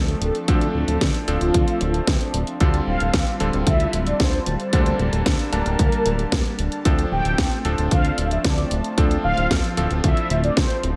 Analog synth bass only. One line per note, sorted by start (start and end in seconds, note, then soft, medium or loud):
0.00 0.15 D2 medium
0.21 0.31 D1 medium
0.48 0.68 D2 loud
0.75 0.85 D1 medium
0.88 0.98 D1 medium
1.01 1.11 D2 medium
1.28 1.38 D1 medium
1.41 1.51 D1 loud
1.54 1.64 D2 medium
1.81 2.01 D1 loud
2.08 2.17 D2 medium
2.34 2.44 D1 loud
2.61 2.80 D2 loud
2.87 2.97 D1 medium
3.01 3.11 D1 medium
3.14 3.24 D2 medium
3.40 3.50 D1 medium
3.54 3.64 D1 loud
3.67 3.87 D2 medium
3.94 4.13 D1 medium
4.20 4.40 D2 medium
4.47 4.56 D1 medium
4.73 4.93 D2 loud
4.99 5.09 D1 medium
5.13 5.23 D1 medium
5.26 5.36 D2 medium
5.52 5.62 D1 medium
5.66 5.76 D1 loud
5.79 5.89 D2 medium
6.06 6.26 D1 loud
6.32 6.42 D2 medium
6.59 6.69 D1 loud
6.85 7.05 D2 loud
7.12 7.22 D1 medium
7.25 7.35 D1 medium
7.38 7.48 D2 medium
7.65 7.75 D1 medium
7.78 7.88 D1 loud
7.92 8.11 D2 medium
8.18 8.38 D1 medium
8.45 8.64 D2 medium
8.71 8.81 D1 medium
8.98 9.18 D2 loud
9.24 9.34 D1 medium
9.38 9.48 D1 medium
9.51 9.61 D2 medium
9.77 9.87 D1 medium
9.91 10.01 D1 loud
10.04 10.14 D2 medium
10.31 10.50 D1 loud
10.57 10.67 D2 medium
10.84 10.94 D1 loud